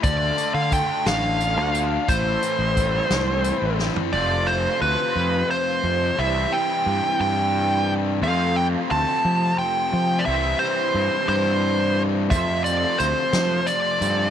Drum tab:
HH |x-x-x-x-x-x-|x-x-x-x-x---|------------|------------|
SD |------o-----|------o---o-|------------|------------|
FT |------------|-----------o|------------|------------|
BD |o---o-------|o---o-------|------------|------------|

HH |------------|------------|x-x-x-x-x-x-|
SD |------------|------------|------o-----|
FT |------------|------------|------------|
BD |------------|------------|o-----------|